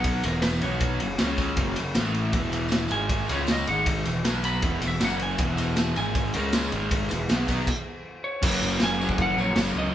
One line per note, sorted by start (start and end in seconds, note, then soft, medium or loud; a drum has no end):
0.00 0.21 B1 loud
0.00 0.23 B2 medium
0.00 0.24 F#3 medium
0.00 0.21 B3 medium
0.00 0.24 B3 loud
0.00 0.21 F#4 medium
0.00 0.21 B4 medium
0.00 0.25 F#5 loud
0.00 ride medium
0.04 kick loud
0.04 tambourine soft
0.23 0.60 E1 medium
0.23 0.62 E2 medium
0.23 0.61 B2 medium
0.23 0.63 E3 medium
0.23 0.61 B3 medium
0.23 0.61 E4 medium
0.23 0.42 A#4 medium
0.23 0.61 B4 medium
0.23 ride medium
0.23 tambourine medium
0.42 0.62 B4 medium
0.42 snare loud
0.42 ride loud
0.42 tambourine medium
0.53 tambourine medium
0.62 0.98 B1 medium
0.62 1.00 B2 medium
0.62 1.01 F#3 loud
0.62 0.98 B3 medium
0.62 1.01 B3 loud
0.62 0.99 F#4 medium
0.62 0.99 B4 medium
0.62 1.39 C#5 medium
0.62 ride medium
0.73 tambourine soft
0.80 kick loud
0.80 ride medium
0.80 tambourine soft
0.93 tambourine soft
0.99 1.19 F#1 medium
0.99 1.16 F#2 medium
0.99 1.16 C#3 medium
0.99 1.17 C#4 medium
0.99 1.18 F#4 medium
0.99 1.18 A#4 medium
0.99 ride medium
1.18 1.55 C#2 medium
1.18 1.57 C#3 medium
1.18 1.57 G#3 medium
1.18 1.55 C#4 medium
1.18 1.58 C#4 loud
1.18 1.55 G#4 medium
1.18 1.55 C#5 medium
1.18 snare loud
1.18 ride loud
1.18 tambourine medium
1.38 kick medium
1.38 ride medium
1.38 tambourine medium
1.49 tambourine soft
1.57 1.75 F#1 medium
1.57 1.76 F#2 medium
1.57 1.77 C#3 medium
1.57 1.77 F#3 loud
1.57 1.93 F#4 medium
1.57 1.93 A#4 medium
1.57 1.94 C#5 loud
1.57 kick loud
1.57 ride medium
1.76 1.95 F#1 medium
1.76 1.93 F#2 medium
1.76 1.93 C#3 medium
1.76 ride medium
1.76 tambourine medium
1.94 2.31 A1 medium
1.94 2.34 A2 medium
1.94 2.34 E3 loud
1.94 2.35 A3 loud
1.94 2.32 E4 medium
1.94 2.32 A4 medium
1.94 2.32 E5 medium
1.94 snare loud
1.94 ride medium
1.94 tambourine medium
2.05 tambourine medium
2.14 ride medium
2.24 tambourine soft
2.33 2.87 E1 medium
2.33 2.89 E2 medium
2.33 2.91 B2 loud
2.33 2.91 E3 loud
2.33 2.69 E4 medium
2.33 2.69 B4 medium
2.33 2.70 E5 loud
2.33 kick loud
2.33 ride medium
2.52 ride medium
2.52 tambourine medium
2.60 tambourine soft
2.69 2.90 E4 medium
2.69 2.90 B4 medium
2.69 2.91 E5 medium
2.69 snare loud
2.69 ride medium
2.69 tambourine medium
2.88 3.26 G#1 medium
2.88 3.28 G#2 medium
2.88 3.29 D#3 loud
2.88 3.29 G#3 medium
2.88 3.27 D#4 medium
2.88 3.26 G#4 medium
2.88 3.26 D#5 medium
2.88 3.27 G#5 loud
2.88 ride medium
2.88 tambourine medium
3.09 kick loud
3.09 ride medium
3.09 tambourine soft
3.28 3.65 C#2 loud
3.28 3.67 C#3 medium
3.28 3.67 G#3 medium
3.28 3.65 C#4 medium
3.28 3.68 C#4 loud
3.28 3.65 G#4 medium
3.28 3.65 C#5 medium
3.28 ride medium
3.28 tambourine medium
3.32 3.48 C#5 medium
3.38 tambourine soft
3.47 snare loud
3.47 ride medium
3.47 tambourine medium
3.52 3.68 D#5 medium
3.57 tambourine medium
3.66 4.03 G#1 medium
3.66 4.05 G#2 medium
3.66 4.06 D#3 medium
3.66 4.06 G#3 medium
3.66 4.03 D#4 medium
3.66 4.04 G#4 medium
3.66 4.03 D#5 medium
3.66 3.86 F#5 medium
3.66 ride medium
3.76 tambourine soft
3.86 kick loud
3.86 ride loud
3.86 tambourine soft
4.05 4.23 E1 medium
4.05 4.21 E2 medium
4.05 4.21 B2 medium
4.05 4.23 E4 loud
4.05 4.22 B4 medium
4.05 4.24 E5 loud
4.05 ride medium
4.05 tambourine medium
4.15 tambourine soft
4.23 4.60 B1 loud
4.23 4.62 B2 medium
4.23 4.63 F#3 medium
4.23 4.60 F#4 medium
4.23 4.60 B4 medium
4.23 4.61 F#5 medium
4.23 snare loud
4.23 ride medium
4.23 tambourine medium
4.27 4.63 B3 loud
4.44 4.80 B5 loud
4.44 ride medium
4.44 tambourine medium
4.61 4.80 E1 loud
4.61 4.81 E2 medium
4.61 4.82 B2 loud
4.61 4.98 E4 medium
4.61 4.98 B4 medium
4.61 4.99 E5 medium
4.61 kick loud
4.61 ride medium
4.61 tambourine soft
4.65 4.82 E3 medium
4.82 4.99 E1 medium
4.82 4.98 E2 medium
4.82 4.98 B2 medium
4.82 ride medium
4.82 tambourine medium
4.87 5.02 E5 medium
4.92 tambourine soft
4.98 5.36 F#1 medium
4.98 5.35 F#4 medium
4.98 5.36 C#5 medium
4.98 5.36 F#5 medium
4.98 snare loud
4.98 ride medium
4.98 tambourine medium
5.02 5.39 F#2 medium
5.02 5.40 C#3 medium
5.02 5.40 F#3 loud
5.02 5.22 F#5 medium
5.10 tambourine medium
5.19 5.40 G#5 medium
5.19 ride medium
5.30 tambourine soft
5.38 5.92 E1 loud
5.38 5.96 E2 medium
5.38 5.96 B2 loud
5.38 5.97 E3 loud
5.38 5.74 E4 medium
5.38 5.74 B4 medium
5.38 5.75 E5 medium
5.38 kick loud
5.38 ride medium
5.38 tambourine soft
5.57 ride medium
5.57 tambourine medium
5.76 5.95 E4 medium
5.76 5.96 B4 medium
5.76 5.96 E5 loud
5.76 snare loud
5.76 ride medium
5.76 tambourine medium
5.96 6.32 G#1 loud
5.96 6.34 G#2 medium
5.96 6.34 D#3 medium
5.96 6.34 G#3 loud
5.96 6.32 D#4 medium
5.96 6.32 G#4 medium
5.96 6.33 D#5 medium
5.96 6.36 G#5 loud
5.96 ride medium
5.96 tambourine medium
6.15 kick loud
6.15 ride medium
6.34 6.69 C#2 medium
6.34 6.72 C#3 medium
6.34 6.72 G#3 medium
6.34 6.70 C#4 medium
6.34 6.73 C#4 loud
6.34 6.69 G#4 medium
6.34 6.55 A#4 medium
6.34 6.70 C#5 medium
6.34 ride medium
6.34 tambourine medium
6.42 tambourine soft
6.53 8.02 G#4 medium
6.53 snare loud
6.53 ride medium
6.53 tambourine medium
6.62 tambourine medium
6.70 7.08 G#1 medium
6.70 7.10 G#2 medium
6.70 7.10 D#3 medium
6.70 7.07 D#4 medium
6.70 7.07 G#4 medium
6.70 7.07 D#5 medium
6.70 ride medium
6.75 7.11 G#3 loud
6.81 tambourine soft
6.91 kick loud
6.91 ride loud
6.91 tambourine soft
7.00 tambourine soft
7.08 7.28 E1 medium
7.08 7.26 E2 medium
7.08 7.26 B2 medium
7.08 7.45 B3 medium
7.08 7.45 E4 medium
7.08 7.46 B4 loud
7.08 ride medium
7.08 tambourine medium
7.29 7.47 B1 medium
7.29 7.47 B2 medium
7.29 7.48 F#3 medium
7.29 7.49 B3 medium
7.29 snare loud
7.29 ride medium
7.29 tambourine medium
7.47 7.66 B1 loud
7.47 7.66 B2 medium
7.47 7.67 F#3 medium
7.47 7.66 B3 medium
7.47 7.67 B3 loud
7.47 7.65 F#4 medium
7.47 7.66 B4 loud
7.47 kick medium
7.47 ride medium
7.47 tambourine medium
7.67 kick loud
7.67 crash medium
8.24 8.77 C#5 medium
8.42 8.58 F#1 loud
8.42 9.56 F#2 medium
8.42 9.03 C#3 loud
8.42 8.78 C#4 loud
8.42 8.78 F#4 medium
8.42 8.79 A#4 loud
8.42 kick loud
8.42 crash loud
8.42 crash medium
8.46 9.00 F#3 loud
8.61 8.78 F#1 medium
8.61 tambourine medium
8.72 tambourine soft
8.80 9.12 F#1 loud
8.80 9.15 C#4 medium
8.80 9.16 F#4 medium
8.80 9.15 A#4 medium
8.80 9.21 G#5 loud
8.80 snare loud
8.80 tambourine loud
8.80 crash medium
9.00 9.36 F#3 medium
9.00 tambourine medium
9.04 9.41 C#3 medium
9.09 kick medium
9.16 9.34 F#1 loud
9.16 9.35 C#4 medium
9.16 9.35 F#4 medium
9.16 9.35 A#4 medium
9.16 kick loud
9.16 crash medium
9.20 9.39 F#5 loud
9.20 tambourine soft
9.36 9.52 A#1 medium
9.36 9.60 F#3 medium
9.36 9.53 C#4 medium
9.36 9.55 F#4 medium
9.36 9.54 A#4 medium
9.36 9.73 C#5 loud
9.36 tambourine medium
9.42 9.57 C#3 medium
9.54 9.71 F#1 medium
9.54 9.93 F#2 medium
9.54 9.79 C#3 loud
9.54 9.91 C#4 medium
9.54 9.91 F#4 medium
9.54 9.91 A#4 medium
9.54 snare loud
9.54 tambourine medium
9.54 crash medium
9.61 9.74 F#3 loud
9.66 tambourine medium
9.74 9.90 C#2 medium
9.74 9.95 F#3 medium
9.74 9.95 D#5 loud
9.80 9.95 C#3 medium
9.86 tambourine soft